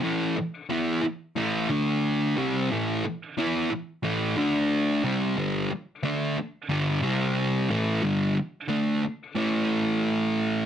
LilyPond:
\new Staff \with { instrumentName = "Distorted electric guitar" } { \clef bass \time 4/4 \key a \minor \tempo 4 = 90 <a, e a>8 r8 <e b e'>8 r8 <a, e a>8 <d a d'>4 <c g c'>8 | <a, e a>8 r8 <e b e'>8 r8 <a, e a>8 <d a d'>4 <c g c'>8 | <g, d g>8 r8 <d a d'>8 r8 <g, d g>8 <c g c'>4 <a, e a>8 | <g, d g>8 r8 <d a d'>8 r8 <a, e a>2 | }